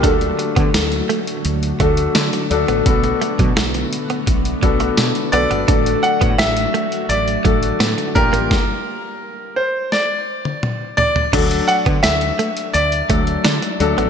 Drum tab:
CC |----------------|----------------|----------------|----------------|
HH |xxxxxxxxxxxxxxxx|xxxxxxxxxxxxxxxx|xxxxxxxxxxxxxxxx|----------------|
TB |----x-------x---|----x-------x---|----x-------x---|----------------|
SD |----o-------o---|----o-------o---|----o-------o---|o-------o-------|
T1 |----------------|----------------|----------------|-----------o----|
T2 |----------------|----------------|----------------|------------o---|
FT |----------------|----------------|----------------|--------------oo|
BD |o--o------o-----|o--o----o-o-----|o--o------o---o-|o---------------|

CC |x---------------|
HH |xxxxxxxxxxxxxxxx|
TB |----x-------x---|
SD |----o-------o---|
T1 |----------------|
T2 |----------------|
FT |----------------|
BD |o--o------o-----|